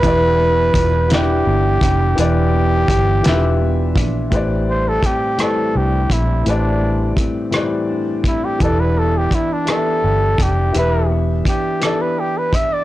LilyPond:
<<
  \new Staff \with { instrumentName = "Flugelhorn" } { \time 6/8 \key a \minor \tempo 4. = 56 b'4. g'4. | g'2~ g'8 r8 | r8 c''16 a'16 g'8 a'8 g'8 e'8 | d'4 r4. e'16 g'16 |
a'16 b'16 a'16 g'16 e'16 d'16 a'4 g'8 | b'8 r8 g'8 a'16 b'16 g'16 b'16 e''16 d''16 | }
  \new Staff \with { instrumentName = "Grand piano" } { \time 6/8 \key a \minor <e e' g' b' d''>4 r8 <e e' fis' g' b' d''>4 r8 | <e e' g' b' d''>4 r8 <e e' f' g' b' e''>4 r8 | <a, e g' b' c'' d''>4 r8 <a, e g' b' c'' d''>4 r8 | <a, e g' b' c'' d''>4 r8 <a, e g' b' c'' d''>4 r8 |
<e e' g' b' d''>4 r8 <e e' g' b' d'' e''>4 r8 | <e e' g' b' e''>4 r8 <e e' g' b' d''>4 r8 | }
  \new Staff \with { instrumentName = "Clean electric guitar" } { \time 6/8 \key a \minor e8 b8 f'16 g'16 d'8 b8 d'8 | e8 b8 g'8 d'8 b8 d'8 | a,8 g8 c'8 g8 d'8 c'8 | a,8 g8 c'8 g8 d'8 c'8 |
e8 b8 d'8 b8 g'8 d'8 | e8 b8 d'8 b8 g'8 d'8 | }
  \new Staff \with { instrumentName = "Fingered electric bass" } { \clef bass \time 6/8 \key a \minor e,,4 e,,4 g,,8 f,,8 | e,,4 g,,8 e,,4 bes,,8 | a,,4 r4 c,8 bes,,8 | a,,4 r2 |
e,,4 r4 g,,8 f,,8 | e,,4 r2 | }
  \new DrumStaff \with { instrumentName = "Drums" } \drummode { \time 6/8 <hh bd>4 <hh bd>8 <hh sn>4 <hh bd>8 | hh4 <hh bd>8 <hh sn>4 <hh bd>8 | <hh bd>4 <hh bd>8 <hh ss>4 <hh bd>8 | hh4 <hh bd>8 <hh ss>4 <hh bd>8 |
<hh bd>4 <hh bd>8 <hh ss>4 <hh bd>8 | hh4 <hh bd>8 <hh ss>4 <hh bd>8 | }
>>